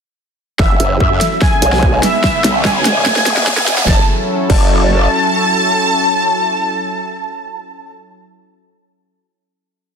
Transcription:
0.59 F#1 F#3 C#4 E4 A4 E5, kick, snare, riser
0.80 F#1, closed hi-hat
1.00 F#2 E5, kick
1.21 snare, closed hi-hat
1.41 G#3 B3 D#4 G#5, kick, snare
1.62 B1, closed hi-hat
1.73 snare
1.83 kick
2.03 E5, snare, closed hi-hat
2.24 D3 C#4, kick, snare
2.44 B1, snare, closed hi-hat
2.65 G#5, kick, snare
2.85 snare, closed hi-hat
3.06 E1 E3 E4 G#4 B4, kick, snare
3.16 snare
3.26 snare, closed hi-hat
3.37 snare
3.47 kick, snare
3.57 snare
3.68 E1, snare, closed hi-hat
3.78 snare
3.88 F#1 F#3 C#4 E4 A4 A5, kick, snare
4.50 F#1 A5, kick, crash

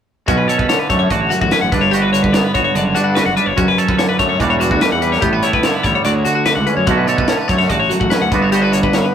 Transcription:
0.28 B1 B2 C#4 F#4, kick, closed hi-hat
0.37 B4
0.48 A4 C#5, closed hi-hat
0.59 B4, kick
0.69 D3 C#5, snare, closed hi-hat
0.79 B4
0.89 F#2 A3 C#5, kick, closed hi-hat
0.99 C#5
1.10 A1 F#4 D5, kick, closed hi-hat
1.21 C#5
1.30 F#2 F#4, closed hi-hat
1.41 A1 F#4, kick
1.51 C#4 B4, snare, closed hi-hat
1.61 A1 F#5
1.72 G1 G2 D4 B4, kick, snare, closed hi-hat
1.81 C#5
1.91 F#4 G4, closed hi-hat
2.02 B4
2.13 D3 C#5, closed hi-hat
2.23 B4, kick
2.33 B3 C#5, snare, closed hi-hat
2.44 B4
2.54 G1 F#4 C#5, kick, closed hi-hat
2.64 C#5
2.75 F#1 D3 D5, closed hi-hat
2.85 C#5
2.95 G2 D4 F#4, closed hi-hat
3.04 F#4
3.15 F#4 B4, snare, closed hi-hat
3.26 F#1 F#5
3.36 G2 D4 B4, closed hi-hat
3.46 G1 C#5
3.56 F#1 F#2 C#4 F#4, kick, closed hi-hat
3.68 B4
3.78 A4 C#5, closed hi-hat
3.88 B4, kick
3.98 D3 C#5, snare, closed hi-hat
4.09 B4
4.19 F#2 A3 C#5, kick, closed hi-hat
4.29 C#5
4.39 E1 E2 E3 G3 D4 F#4 D5, kick, closed hi-hat
4.50 C#5
4.60 F#4, closed hi-hat
4.71 D2 F#4, kick
4.81 E3 B4, snare, closed hi-hat
4.92 E2 F#5
5.02 G3 B4, closed hi-hat
5.12 C#5, snare
5.21 A1 A2 B3 G4, kick, closed hi-hat
5.33 B4
5.43 E4 C#5, closed hi-hat
5.53 B4, kick
5.63 D3 C#5, snare, closed hi-hat
5.74 B4
5.83 A1 G3 C#5, kick, closed hi-hat
5.95 C#5
6.05 D2 F#4 D5, closed hi-hat
6.14 C#5
6.25 D3 F#4, closed hi-hat
6.35 F#4
6.46 D3 B4, snare, closed hi-hat
6.55 C#2 F#5
6.67 C#4 B4, closed hi-hat
6.77 F#2 C#5
6.87 B1 B2 D3 A3 C#4 F#4, kick, closed hi-hat
6.97 B4
7.07 A4 C#5, closed hi-hat
7.17 B4, kick
7.28 D3 C#5, snare, closed hi-hat
7.38 B4
7.48 F#2 A3 C#5, kick, closed hi-hat
7.58 C#5, snare
7.69 A1 F#4 D5, kick, closed hi-hat
7.80 C#5
7.90 F#2 F#4, closed hi-hat
8.00 A1 F#4, kick
8.10 C#4 B4, snare, closed hi-hat
8.22 D2 F#5
8.31 G1 G2 D3 B3 D4 F#4 B4, kick, closed hi-hat
8.42 C#5
8.52 F#4 G4, closed hi-hat
8.62 B4
8.72 D3 C#5, closed hi-hat
8.83 B4, kick
8.93 B3 C#5, snare, closed hi-hat
9.04 B4

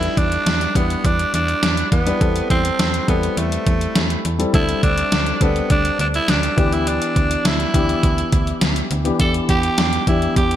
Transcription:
Already playing: G3 D4 E4 B4
0.03 closed hi-hat
0.17 E2 D4, kick, closed hi-hat
0.32 closed hi-hat
0.46 E2, snare, closed hi-hat
0.61 closed hi-hat
0.75 E2 G3 B3 D4 E4 B4, kick, closed hi-hat
0.90 closed hi-hat
1.04 E2 D4, kick, closed hi-hat
1.19 closed hi-hat
1.34 E2 D4, closed hi-hat
1.48 closed hi-hat
1.63 E2, snare, closed hi-hat
1.77 closed hi-hat
1.92 E2 B3, kick, closed hi-hat
2.06 G3 D4 E4 B4, closed hi-hat
2.20 E2 G3 C4 E4 A4, kick, closed hi-hat
2.36 closed hi-hat
2.50 E2 C4, kick, closed hi-hat
2.65 closed hi-hat
2.79 E2, snare, closed hi-hat
2.94 closed hi-hat
3.08 E2 G3 B3 C4 E4 A4, kick, closed hi-hat
3.23 closed hi-hat
3.37 E2 A3, closed hi-hat
3.52 closed hi-hat
3.67 E2, kick, closed hi-hat
3.81 closed hi-hat
3.96 E2, snare, closed hi-hat
4.10 closed hi-hat
4.25 E2, closed hi-hat
4.39 G3 C4 E4 A4, closed hi-hat
4.53 D2 G3 C4 D4 E4 A4, kick, closed hi-hat
4.69 closed hi-hat
4.83 D2 D4, kick, closed hi-hat
4.98 closed hi-hat
5.12 D2, snare, closed hi-hat
5.26 closed hi-hat
5.40 D2 G3 B3 C4 D4 A4, kick, closed hi-hat
5.56 closed hi-hat
5.70 D2 D4, kick, closed hi-hat
5.85 closed hi-hat
5.99 D2 D4, closed hi-hat
6.14 E4, closed hi-hat
6.28 D2 D4, snare, closed hi-hat
6.43 closed hi-hat
6.57 D2 E3 B3 D4 G4, kick, closed hi-hat
6.72 E4, closed hi-hat
6.87 D4, closed hi-hat
7.02 closed hi-hat
7.16 D2, kick, closed hi-hat
7.31 closed hi-hat
7.45 D2 E4, snare, closed hi-hat
7.60 closed hi-hat
7.74 D2 E3 B3 D4 G4, kick, closed hi-hat
7.89 closed hi-hat
8.03 D2, kick, closed hi-hat
8.18 closed hi-hat
8.32 D2, kick, closed hi-hat
8.47 closed hi-hat
8.61 D2, snare, closed hi-hat
8.76 closed hi-hat
8.91 D2, closed hi-hat
9.04 E3 B3 D4 G4, closed hi-hat
9.19 E2 E3 B3 D4 G4 A4, kick, closed hi-hat
9.34 closed hi-hat
9.49 E2 G4, kick, closed hi-hat
9.63 closed hi-hat
9.78 E2, snare, closed hi-hat
9.93 closed hi-hat
10.07 E2 E3 B3 D4 E4 G4, kick, closed hi-hat
10.22 closed hi-hat
10.36 E2 G4, kick, closed hi-hat
10.51 closed hi-hat

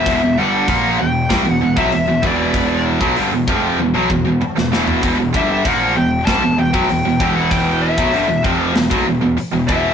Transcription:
Already playing: E5
0.06 E1 E2 B2, kick, open hi-hat
0.22 E1 E2 B2
0.38 G1 G2 D3 G3 F#5
0.68 A#1 A#2 F3 A#3, kick, open hi-hat
0.99 E1 E2 B2 G5
1.30 C2 C3 G3, kick, snare, open hi-hat
1.46 E1 E2 B2
1.50 F#5
1.61 E1 E2 B2
1.76 B1 B2 F#3 E5, kick
1.92 E1 E2 B2 E5, open hi-hat
2.07 E1 E2 B2
2.23 E1 E2 B2 E3 D5, kick
2.54 kick, open hi-hat
3.01 B1 B2 F#3, kick
3.16 G1 G2 D3, open hi-hat
3.32 E1 E2 B2
3.47 F1 F2 C3 F3, kick
3.79 E1 E2 B2, high tom
3.94 B1 B2 F#3
4.10 E1 E2 B2, kick
4.25 E1 E2 B2
4.41 muted distorted electric guitar stroke, muted picked electric bass stroke, mid tom
4.57 E1 E2 B2, snare
4.72 E1 E2 B2 E3, snare
4.88 floor tom
5.03 E1 E2 B2, kick, open hi-hat
5.18 E1 E2 B2
5.34 G1 G2 D3 G3 E5, kick
5.52 E5
5.65 A#1 A#2 F3 A#3 F#5, kick, open hi-hat
5.96 E1 E2 B2 G5
6.26 C2 C3 G3 A5, kick, snare, open hi-hat
6.43 E1 E2 B2
6.58 E1 E2 B2 G5
6.73 B1 B2 F#3, kick
6.89 E1 E2 B2, open hi-hat
7.05 E1 E2 B2
7.20 E1 E2 B2 E3, kick
7.35 F#5
7.51 G5, kick, open hi-hat
7.82 E5
7.98 B1 B2 F#3, kick
8.13 G1 G2 D3, open hi-hat
8.28 E1 E2 B2
8.44 F1 F2 C3 F3, kick
8.75 E1 E2 B2, snare, open hi-hat
8.90 B1 B2 F#3, kick
9.06 E1 E2 B2
9.21 E1 E2 B2
9.37 muted distorted electric guitar stroke, muted picked electric bass stroke, open hi-hat
9.53 E1 E2 B2
9.68 E1 E2 B2 E3 E5, kick

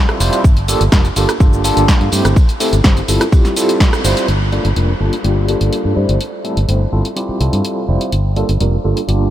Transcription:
Already playing: G3 C4 E4 F4 A4
0.09 cross-stick, closed hi-hat, tambourine
0.20 F1 G3 C4 E4 F4 C5, open hi-hat, tambourine, shaker
0.33 closed hi-hat, tambourine, shaker
0.44 G1, kick, tambourine, shaker
0.57 closed hi-hat, tambourine
0.68 A#3 D4 F4 G4 A4, open hi-hat, tambourine, shaker
0.81 G1, closed hi-hat, tambourine, shaker
0.92 A#3 D4 F4 G4 A#4, kick, snare, shaker
1.05 closed hi-hat, tambourine, shaker
1.16 G1 A#3 D4 F4 G4 A4, open hi-hat, tambourine, shaker
1.29 cross-stick, closed hi-hat, shaker
1.40 G1 A#3 D4 F4 G4 A4, kick, tambourine, shaker
1.53 tambourine, shaker
1.64 A#3 D4 F4 G4 A4, open hi-hat, tambourine, shaker
1.77 G1, closed hi-hat, tambourine, shaker
1.88 kick, snare, tambourine, shaker
2.01 G2, closed hi-hat, tambourine
2.12 G2 A3 C4 E4 G4 C5, open hi-hat, tambourine, shaker
2.25 G1, cross-stick, closed hi-hat, tambourine, shaker
2.36 kick, tambourine, shaker
2.49 closed hi-hat, tambourine, shaker
2.60 A3 C4 E4 G4 A4, open hi-hat, tambourine, shaker
2.72 G1, closed hi-hat, tambourine, shaker
2.84 A3 C4 E4 G4 C5, kick, snare, tambourine, shaker
2.97 closed hi-hat, tambourine, shaker
3.08 G1 G3 C4 E4 F4 A4, open hi-hat, tambourine, shaker
3.21 cross-stick, closed hi-hat, tambourine, shaker
3.32 G3 C4 E4 F4 G4, kick, tambourine, shaker
3.45 snare, closed hi-hat, tambourine, shaker
3.56 G3 C4 E4 F4 A4, open hi-hat, tambourine, shaker
3.69 closed hi-hat, tambourine, shaker
3.80 kick, snare, tambourine, shaker
3.93 cross-stick, closed hi-hat, tambourine, shaker
4.04 G1 G3 C4 E4 F4 C5, open hi-hat, tambourine, shaker
4.17 closed hi-hat, shaker
4.28 G1, closed hi-hat
4.52 G3 A#3 D4 F4 A4, closed hi-hat
4.65 G1, closed hi-hat
4.76 F1 G3 A#3 D4 F4 A#4, closed hi-hat
5.00 G1 G3 A#3 D4 F4 A4
5.13 closed hi-hat
5.24 G1 G3 A#3 D4 F4 G4, closed hi-hat
5.48 G3 A#3 D4 F4 A4, closed hi-hat
5.61 G1, closed hi-hat
5.73 closed hi-hat
5.85 G2
5.96 G2 G3 A3 C4 E4 C5
6.09 G1, closed hi-hat
6.21 closed hi-hat
6.44 G3 A3 C4 E4 A4, closed hi-hat
6.57 G1, closed hi-hat
6.68 G1 G3 A3 C4 E4 C5, closed hi-hat
6.92 G1 G3 C4 E4 F4 A4
7.05 closed hi-hat
7.16 G3 C4 E4 F4 G4, closed hi-hat
7.29 muted fingered electric bass stroke
7.40 C2 G3 C4 E4 F4 A4, closed hi-hat
7.53 G2, closed hi-hat
7.65 closed hi-hat
7.88 F1 G3 C4 E4 F4 C5
8.01 closed hi-hat
8.12 G1, closed hi-hat
8.36 G3 A#3 D4 F4 A4, closed hi-hat
8.49 G1, closed hi-hat
8.60 F1 G3 A#3 D4 F4 A#4, closed hi-hat
8.84 G1 G3 A#3 D4 F4 A4
8.97 closed hi-hat
9.08 G1 G3 A#3 D4 F4 G4, closed hi-hat

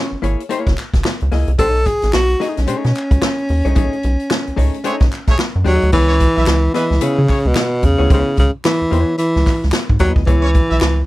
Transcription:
Already playing: C#4
0.12 G#1
0.22 G#1 A#3 E4 G#4 C#5, closed hi-hat
0.40 closed hi-hat
0.49 A#3 E4 G#4 C#5, closed hi-hat
0.67 F#1, kick, snare, closed hi-hat
0.78 snare, clap, closed hi-hat
0.94 F#1, kick, snare, closed hi-hat
1.04 snare, clap
1.20 C#2, closed hi-hat
1.32 C#2 A#3 E4 G#4 D#5, snare, open hi-hat
1.48 C2, closed hi-hat
1.58 B1 A3 D#4 G#4 A4 C#5, kick, closed hi-hat
1.75 closed hi-hat
1.85 G#4, kick, closed hi-hat
2.02 A1, snare, closed hi-hat
2.13 B1 F#4, snare, clap
2.30 closed hi-hat
2.40 A3 D#4 G#4 D#5, snare, closed hi-hat
2.49 D#4
2.57 B1 C#4, snare, closed hi-hat
2.67 B2 A3 D#4 G#4 C#5, closed hi-hat
2.84 B2, snare, closed hi-hat
2.95 clap, closed hi-hat
3.11 C#2, kick, closed hi-hat
3.22 snare, clap
3.38 closed hi-hat
3.49 D#2, open hi-hat
3.65 C2 A3 D#4 G#4 C#5, closed hi-hat
3.75 B1 A3 D#4 G#4 C#5, kick, closed hi-hat
3.93 closed hi-hat
4.03 B1, closed hi-hat
4.20 closed hi-hat
4.30 snare, clap
4.47 C#2, closed hi-hat
4.56 C#2 A3 D#4 G#4 C#5, kick, open hi-hat
4.74 closed hi-hat
4.84 A3 D#4 G#4 C#5, closed hi-hat
5.00 B1, kick, snare, closed hi-hat
5.11 snare, clap, closed hi-hat
5.27 B1 A3 G#4 C#5, kick, snare, closed hi-hat
5.39 snare, clap
5.56 F#2
5.64 D#2 F#3 A3 D#4 G#4 D#5, snare, open hi-hat
5.82 D2, closed hi-hat
5.92 C#2 E3 B3 E4 G#4 C#5, kick, crash
6.08 C#4 C#5
6.20 kick, closed hi-hat
6.36 B1 E4 E5, snare
6.46 C#2, snare, clap, closed hi-hat
6.73 E3 B3 E4 G#4 B4 D#5, snare, closed hi-hat
6.91 C#2, snare
7.01 C#3 B3 E4 G#4 C#5, closed hi-hat
7.18 C#3
7.29 C#4 C#5, kick, clap, open hi-hat
7.45 C#2 B2
7.55 snare, clap, closed hi-hat
7.82 E2 C#3, kick, closed hi-hat
7.98 D2 B3 E4 G#4 C#5
8.10 C#2 C#3 B3 E4 G#4 C#5, kick, closed hi-hat
8.37 C#2 C#3, kick, closed hi-hat
8.64 E3, snare, clap, closed hi-hat
8.82 E2
8.91 E2 B3 E4 G#4 C#5, closed hi-hat
9.18 E3, closed hi-hat
9.36 C#2, snare
9.46 kick, snare, clap, open hi-hat
9.62 C#2, snare
9.72 snare, clap, closed hi-hat
9.89 G#2, kick
9.99 D#2 F#3 B3 E4 G#4 D#5, kick, snare, closed hi-hat
10.16 D2, kick
10.26 C#2 E3 B3 E4 G#4 C#5, kick, closed hi-hat
10.43 C#4 C#5
10.54 kick, closed hi-hat
10.69 B1 E4 E5, snare
10.81 C#2, snare, clap, closed hi-hat

